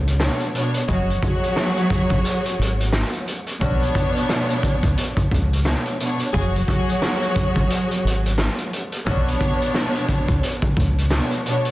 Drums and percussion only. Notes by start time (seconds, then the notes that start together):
0.08 closed hi-hat
0.20 snare
0.40 closed hi-hat
0.55 closed hi-hat
0.74 closed hi-hat
0.89 kick, closed hi-hat
1.10 closed hi-hat
1.22 kick, closed hi-hat
1.43 closed hi-hat
1.56 snare
1.77 closed hi-hat
1.90 kick, closed hi-hat
2.10 kick, closed hi-hat
2.25 closed hi-hat
2.45 closed hi-hat
2.61 closed hi-hat
2.80 closed hi-hat
2.92 snare
3.13 closed hi-hat
3.27 closed hi-hat
3.47 closed hi-hat
3.61 kick, closed hi-hat
3.83 closed hi-hat
3.95 kick, closed hi-hat
4.16 closed hi-hat
4.29 snare
4.50 closed hi-hat
4.63 kick, closed hi-hat
4.83 kick, closed hi-hat
4.98 closed hi-hat
5.17 kick, closed hi-hat
5.31 kick, closed hi-hat
5.53 closed hi-hat
5.65 snare
5.86 closed hi-hat
6.00 closed hi-hat
6.19 closed hi-hat
6.34 kick, closed hi-hat
6.55 closed hi-hat
6.68 kick, closed hi-hat
6.89 closed hi-hat
7.02 snare
7.23 closed hi-hat
7.36 kick, closed hi-hat
7.56 kick, closed hi-hat
7.70 closed hi-hat
7.91 closed hi-hat
8.07 closed hi-hat
8.26 closed hi-hat
8.38 snare
8.58 closed hi-hat
8.73 closed hi-hat
8.92 closed hi-hat
9.07 kick, closed hi-hat
9.28 closed hi-hat
9.41 kick, closed hi-hat
9.61 closed hi-hat
9.74 snare
9.95 closed hi-hat
10.08 kick, closed hi-hat
10.28 kick, closed hi-hat
10.43 closed hi-hat
10.62 kick, closed hi-hat
10.77 kick, closed hi-hat
10.98 closed hi-hat
11.10 snare
11.31 closed hi-hat
11.46 closed hi-hat
11.65 closed hi-hat